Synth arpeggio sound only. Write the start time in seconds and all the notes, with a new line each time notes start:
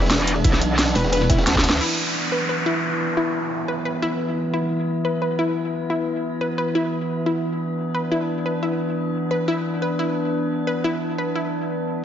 0.44 E4
0.96 B4
1.13 B4
1.30 E4
1.81 E4
2.32 B4
2.49 B4
2.66 E4
3.17 E4
3.68 B4
3.85 B4
4.02 E4
4.54 E4
5.05 B4
5.22 B4
5.39 E4
5.90 E4
6.41 B4
6.58 B4
6.75 E4
7.26 E4
7.95 B4
8.12 E4
8.46 B4
8.63 E4
9.31 B4
9.48 E4
9.82 B4
9.99 E4
10.67 B4
10.84 E4
11.18 B4
11.36 E4